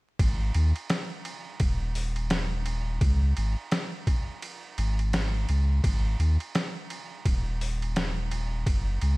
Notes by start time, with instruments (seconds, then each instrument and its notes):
0.19 sub bass G#1, kick, ride
0.54 sub bass D#2, ride
0.76 ride
0.90 snare, ride
1.25 ride
1.60 sub bass D#1, kick, ride
1.95 open hi-hat
2.16 ride
2.30 snare, ride
2.66 ride
3.01 sub bass C#2, kick, ride
3.37 sub bass G#1, ride
3.71 snare, ride
4.07 kick, ride
4.42 ride
4.78 sub bass G#1, ride
4.99 ride
5.13 snare, ride
5.49 sub bass C#2, ride
5.84 sub bass G#1, kick, ride
6.19 sub bass D#2, ride
6.40 ride
6.55 snare, ride
6.90 ride
7.25 sub bass D#1, kick, ride
7.61 open hi-hat
7.82 ride
7.96 snare, ride
8.31 ride
8.66 sub bass F#1, kick, ride
9.01 sub bass C#2, ride